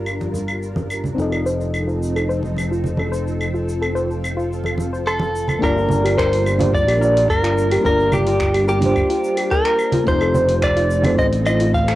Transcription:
Already playing: G1 G3 A#3 D4 F4 G4 A#4 D5
0.06 claves, shaker
0.21 high conga, shaker
0.34 high conga, shaker
0.48 claves, shaker
0.63 shaker
0.76 high conga, shaker
0.90 claves, shaker
1.04 low conga, shaker
1.15 F1 F3 C4 D#4 F4 A4
1.19 A4 D#5, shaker
1.32 A4, claves, shaker
1.46 C5, shaker
1.61 shaker
1.74 claves, shaker
1.88 F4, shaker
2.03 shaker
2.16 A4, claves, shaker
2.29 C5, shaker
2.43 high conga, shaker
2.56 high conga, claves, shaker
2.71 F4, shaker
2.84 low conga, shaker
2.97 A4, high conga, claves, shaker
3.12 C5, shaker
3.27 shaker
3.40 F4, claves, shaker
3.54 F4, shaker
3.69 shaker
3.81 A4, claves, shaker
3.95 C5, shaker
4.11 shaker
4.24 claves, shaker
4.37 F4, shaker
4.53 shaker
4.64 A4, high conga, claves, shaker
4.78 high conga, shaker
4.93 C5, shaker
5.07 A4 C6, claves, shaker
5.20 A4, high conga, shaker
5.36 shaker
5.48 A5, low conga, claves, shaker
5.59 G1 G3 A#3 D4 F4 A#4, kick
5.63 G4 A#4 D5, claves, shaker
5.76 F4, shaker
5.89 low conga, shaker
6.04 G4, open hi-hat, claves, shaker
6.17 A#4 C5, finger snap, kick, shaker
6.33 open hi-hat, shaker
6.46 claves, shaker
6.58 A#3 D4 F4 G4 D5, open hi-hat, high conga, low conga, shaker
6.73 D5, kick, shaker
6.87 A#1 G4, open hi-hat, claves, shaker
6.98 A#3 D4 F4 A#4
7.02 G4 D5, shaker
7.17 open hi-hat, shaker
7.29 G1 A#4, kick, claves, shaker
7.43 F4, finger snap, shaker
7.58 shaker
7.71 G4, open hi-hat, claves, shaker
7.81 G1 A#3 D4 F4 A#4, kick
7.85 G4 A#4 D5, shaker
7.99 shaker
8.12 G4, low conga, claves, shaker
8.26 F4, open hi-hat, shaker
8.40 finger snap, kick, shaker
8.54 G4, open hi-hat, claves, shaker
8.68 G4 A#4, shaker
8.79 A#3 D4 F4, open hi-hat, high conga, low conga, shaker
8.84 G4 C5
8.96 kick, claves, shaker
9.10 F4, open hi-hat, shaker
9.24 shaker
9.37 G4, open hi-hat, claves, shaker
9.51 A#4, kick, shaker
9.65 finger snap, shaker
9.79 claves, shaker
9.92 F4, open hi-hat, low conga, shaker
10.04 F1 F3 A3 C4 D#4 A4, kick, shaker
10.08 F4 C5
10.21 A4, claves, shaker
10.35 C5, low conga, shaker
10.49 open hi-hat, shaker
10.62 D5, finger snap, kick, claves, shaker
10.77 F4, open hi-hat, shaker
10.90 shaker
11.03 A3 C4 D#4 F4 A4 C5, open hi-hat, high conga, low conga, claves, shaker
11.18 A1 C5 D#5, kick, shaker
11.33 open hi-hat, shaker
11.42 A3 C4 D#4, claves, shaker
11.47 F4 C5 D#5
11.60 F4, open hi-hat, shaker
11.74 F5, kick, shaker
11.88 A4, finger snap, claves, shaker

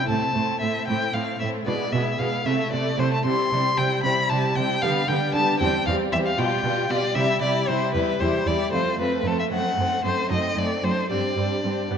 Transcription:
0.08 A2 A3 C4 E4 A5
0.34 A2 A3 C4 E4
0.60 A2 A3 C4 E4 E5
0.86 A2 A3 C4 E4 G5
1.13 A2 A3 C4 E4 F5
1.39 A2 A3 C4 E4 E5
1.66 B2 G#3 B3 E4 D5
1.92 B2 G#3 B3 E4 E5
2.18 B2 G#3 B3 E4 F5
2.46 C3 A3 E4 E5
2.72 C3 A3 E4 D5
2.98 C3 A3 E4 C5
3.13 A5
3.25 C3 G3 C4 E4 C6
3.51 C3 G3 C4 E4
3.76 C3 G3 C4 E4 G5
4.03 C3 G3 C4 E4 B5
4.29 C3 G3 C4 E4 A5
4.55 C3 G3 C4 E4 G5
4.81 D3 G3 B3 G4 F5
5.08 D3 G3 B3 G4 G5
5.33 D3 G3 B3 G4 A5
5.59 E2 G3 C4 G4 G5
5.85 E2 G3 C4 G4 F5
6.11 E2 G3 C4 G4 E5
6.26 F5
6.37 B2 G3 F4 G4 G5
6.63 B2 G3 F4 G4
6.89 B2 G3 F4 G4 D5
7.15 C3 G3 E4 G4 E5
7.41 C3 G3 E4 G4 D5
7.68 C3 G3 E4 G4 C5
7.94 E2 G3 E4 G4 B4
8.20 E2 G3 E4 G4 C5
8.46 E2 G3 E4 G4 D5
8.73 F2 A3 C4 F4 A4 C5
8.98 F2 A3 C4 F4 B4
9.25 F2 A3 C4 F4 A4
9.39 E5
9.51 F#2 A3 C4 D#4 F#5
9.77 F#2 A3 C4 D#4
10.04 F#2 A3 C4 D#4 C5
10.29 F#2 A3 C4 D#4 A4 D#5
10.56 F#2 A3 C4 D#4 D5
10.83 F#2 A3 C4 D#4 C5
11.10 G2 G3 C4 D4 G4 D5
11.37 G2 G3 C4 D4
11.64 G2 G3 C4 D4
11.90 G2 G3 B3 D4 G4

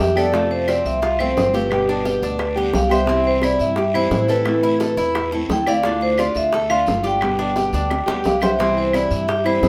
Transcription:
Already playing: D3 G4
0.00 F2 G3 B3 G4, high bongo, low bongo, short guiro
0.16 D3 G3 B3 G4 A4 D5, high bongo, short guiro, claves
0.32 C3 F3 A3 C4 F4, high bongo, long guiro
0.51 C5, high bongo
0.68 C4 D5, high bongo, short guiro, claves
0.85 C2 E5, high bongo, short guiro
1.02 F4, muted nylon-string guitar stroke, high bongo, long guiro
1.19 F3 A3 C4 F4 C5, claves
1.37 G1 F3 A3 C4 F4, high bongo, low bongo, short guiro
1.53 F3 A3 C4 F4 G4 B4, high bongo, short guiro
1.69 B2 D3 G3 B3 G4, high bongo, long guiro, claves
1.89 D4, high bongo
2.05 G4, high bongo, short guiro
2.22 D2 D4, high bongo, short guiro
2.38 muted nylon-string guitar stroke, high bongo, long guiro, claves
2.56 D3 G3 B3 G4
2.73 C2 D3 G3 B3 G4 F5, high bongo, low bongo, short guiro
2.89 D3 G3 B3 G4 C5 E5, high bongo, short guiro, claves
3.06 C3 E3 G3 C4 E4, high bongo, long guiro
3.24 C5, high bongo
3.42 E4 D5, high bongo, short guiro, claves
3.59 G2 E5, high bongo, short guiro
3.76 G4, muted nylon-string guitar stroke, high bongo, long guiro
3.94 E3 G3 C4 E4 C5, claves
4.11 A2 E3 G3 C4 E4, high bongo, low bongo, short guiro
4.28 E3 G3 C4 E4 A4 B4, high bongo, short guiro
4.45 E3 A3 C4 E4, high bongo, long guiro, claves
4.63 E4, high bongo
4.80 A4, high bongo, short guiro
4.97 E2 E4, high bongo, short guiro
5.15 muted nylon-string guitar stroke, high bongo, long guiro, claves
5.32 A3 C4 E4 A4
5.49 D2 E3 A3 C4 E4 G5, high bongo, low bongo, short guiro
5.66 A3 C4 E4 D5 F5, high bongo, short guiro, claves
5.83 D3 A3 D4 F4, high bongo, long guiro
6.01 C5, high bongo
6.18 F4 D5, high bongo, short guiro, claves
6.35 D2 E5, high bongo, short guiro
6.52 A4, muted nylon-string guitar stroke, high bongo, long guiro
6.70 A3 D4 F4 F5, claves
6.86 G1 D3 A3 D4 F4, high bongo, low bongo, short guiro
7.03 A3 D4 F4 G4 G5, high bongo, short guiro
7.20 B2 D3 G3 B3 G4, high bongo, long guiro, claves
7.39 D4, high bongo
7.56 G4, high bongo, short guiro
7.73 D2 D4, high bongo, short guiro
7.90 muted nylon-string guitar stroke, high bongo, long guiro, claves
8.06 D2 D3 G3 B3 G4, high bongo
8.24 C2 D3 G3 B3 G4 F5, low bongo, short guiro
8.41 D3 G3 B3 G4 C5 E5, low bongo, short guiro, claves
8.58 C3 E3 G3 C4 E4, high bongo, long guiro
8.77 C5, high bongo
8.93 E4 D5, high bongo, short guiro, claves
9.11 G2 E5, high bongo, short guiro
9.28 G4, muted nylon-string guitar stroke, high bongo, long guiro
9.44 E3 G3 C4 E4 C5, claves
9.62 G2 E3 G3 C4 E4, high bongo, low bongo, short guiro

